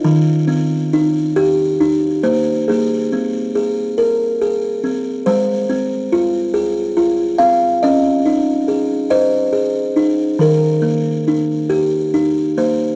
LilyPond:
\new Staff \with { instrumentName = "Kalimba" } { \time 6/8 \key aes \major \tempo 4. = 46 << { ees''2 r8 c''8 | aes'4. r4. | c''2~ c''8 f''8 | ees''4 r8 c''4. |
bes'4. r4 c''8 | } \\ { ees8 c'8 ees'8 g'8 ees'8 bes8 | bes8 c'8 aes'8 bes'8 aes'8 c'8 | aes8 c'8 f'8 aes'8 f'8 c'8 | des'8 ees'8 aes'8 ees''8 aes'8 ees'8 |
ees8 bes8 ees'8 g'8 ees'8 bes8 | } >> }